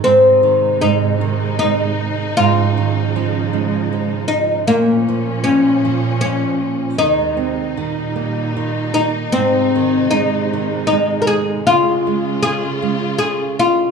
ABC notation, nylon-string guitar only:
X:1
M:3/4
L:1/8
Q:1/4=78
K:Ab
V:1 name="Nylon-string guitar" clef=bass
A,, E, A,, E, A,,2 | A,, E, F, A, F,2 | B,, F, B,, F, B,,2 | E, C E, B, E, B, |
A,, E, A, E, A,2 | D, A, D, A, D,2 |]